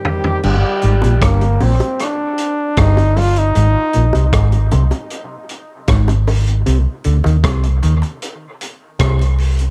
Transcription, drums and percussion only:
0.05 floor tom medium
0.24 floor tom medium
0.43 crash medium
0.81 closed hi-hat medium
1.02 closed hi-hat medium
1.02 high bongo medium
1.22 kick loud
1.22 cross-stick loud
1.22 closed hi-hat loud
1.41 closed hi-hat medium
1.41 high bongo soft
1.60 open hi-hat medium
1.60 high bongo medium
1.60 low bongo medium
1.80 closed hi-hat soft
1.80 high bongo medium
1.99 cross-stick medium
1.99 closed hi-hat medium
2.38 closed hi-hat medium
2.77 kick loud
2.77 cross-stick loud
2.77 closed hi-hat medium
2.77 high bongo medium
2.97 closed hi-hat medium
2.97 high bongo medium
3.16 open hi-hat medium
3.16 low bongo medium
3.36 closed hi-hat medium
3.55 closed hi-hat medium
3.93 closed hi-hat medium
4.13 closed hi-hat soft
4.13 high bongo medium
4.33 kick loud
4.33 cross-stick loud
4.33 closed hi-hat loud
4.52 closed hi-hat medium
4.52 high bongo soft
4.71 closed hi-hat medium
4.71 low bongo medium
4.91 closed hi-hat soft
4.91 high bongo medium
5.10 closed hi-hat medium
5.49 closed hi-hat medium
5.88 kick loud
5.88 cross-stick loud
5.88 closed hi-hat loud
5.88 high bongo medium
6.08 closed hi-hat medium
6.08 high bongo medium
6.27 open hi-hat medium
6.27 low bongo medium
6.47 closed hi-hat medium
6.66 closed hi-hat medium
7.04 closed hi-hat medium
7.24 closed hi-hat medium
7.24 high bongo medium
7.44 kick loud
7.44 cross-stick loud
7.44 closed hi-hat loud
7.63 closed hi-hat medium
7.63 high bongo medium
7.83 closed hi-hat medium
7.83 high bongo medium
7.83 low bongo medium
8.02 closed hi-hat soft
8.02 high bongo medium
8.22 closed hi-hat medium
8.61 closed hi-hat medium
8.99 kick loud
8.99 cross-stick loud
8.99 closed hi-hat loud
8.99 high bongo medium
9.19 closed hi-hat medium
9.19 high bongo medium
9.39 open hi-hat medium
9.39 low bongo medium
9.59 closed hi-hat medium

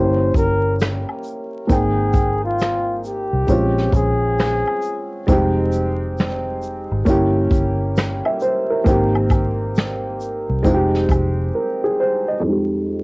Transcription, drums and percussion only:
0.34 kick medium
0.34 closed hi-hat soft
0.34 shaker soft
0.80 finger snap medium
0.80 snare loud
0.80 closed hi-hat medium
0.80 shaker medium
1.09 high woodblock medium
1.24 shaker soft
1.26 shaker soft
1.69 kick loud
1.69 closed hi-hat medium
1.69 shaker medium
2.13 kick loud
2.13 closed hi-hat soft
2.13 shaker soft
2.15 shaker medium
2.59 finger snap medium
2.59 snare medium
2.59 closed hi-hat medium
2.59 shaker medium
3.04 shaker soft
3.48 kick medium
3.48 closed hi-hat medium
3.48 shaker medium
3.78 snare soft
3.92 kick medium
3.92 closed hi-hat soft
3.92 shaker soft
3.95 shaker soft
4.38 finger snap medium
4.38 snare loud
4.38 closed hi-hat medium
4.38 shaker medium
4.67 high woodblock medium
4.82 shaker soft
4.84 shaker medium
5.28 kick loud
5.28 closed hi-hat medium
5.28 shaker medium
5.72 closed hi-hat soft
5.72 shaker soft
5.72 shaker medium
6.18 finger snap medium
6.18 snare loud
6.18 closed hi-hat medium
6.18 shaker medium
6.62 shaker soft
7.06 kick medium
7.06 closed hi-hat medium
7.06 shaker medium
7.51 kick loud
7.51 closed hi-hat soft
7.51 shaker soft
7.53 shaker soft
7.97 finger snap loud
7.97 snare loud
7.97 closed hi-hat medium
7.97 shaker medium
8.25 high woodblock medium
8.40 shaker soft
8.42 shaker medium
8.86 kick loud
8.86 closed hi-hat medium
8.86 shaker medium
9.15 high woodblock medium
9.30 kick loud
9.30 high woodblock medium
9.30 shaker soft
9.30 shaker medium
9.76 finger snap medium
9.76 snare medium
9.76 closed hi-hat medium
9.76 shaker medium
10.21 shaker soft
10.65 kick medium
10.65 closed hi-hat medium
10.65 shaker medium
10.95 snare soft
11.09 kick medium
11.09 closed hi-hat soft
11.09 high woodblock medium
11.09 shaker soft
11.11 shaker soft

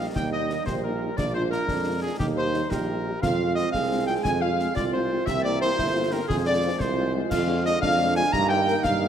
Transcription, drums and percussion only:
0.16 concert bass drum medium
0.16 snare medium
0.50 snare medium
0.67 concert bass drum medium
0.67 snare medium
1.18 concert bass drum loud
1.18 snare medium
1.18 crash soft
1.52 snare medium
1.68 concert bass drum medium
1.68 snare medium
2.20 concert bass drum loud
2.20 snare medium
2.54 snare medium
2.72 concert bass drum medium
2.72 snare medium
3.23 concert bass drum medium
3.23 snare medium
3.23 crash soft
3.57 snare medium
3.74 concert bass drum medium
3.74 snare medium
4.25 concert bass drum medium
4.25 snare medium
4.60 snare medium
4.77 concert bass drum medium
4.77 snare medium
5.27 concert bass drum medium
5.27 snare medium
5.27 crash soft
5.62 snare medium
5.79 concert bass drum medium
5.79 snare medium
6.30 concert bass drum medium
6.30 snare medium
6.80 concert bass drum medium
6.80 snare medium
7.31 concert bass drum medium
7.31 snare medium
7.31 crash medium
7.65 snare medium
7.83 concert bass drum medium
7.83 snare medium
8.33 concert bass drum medium
8.33 snare medium
8.68 snare medium
8.84 concert bass drum medium
8.84 snare medium

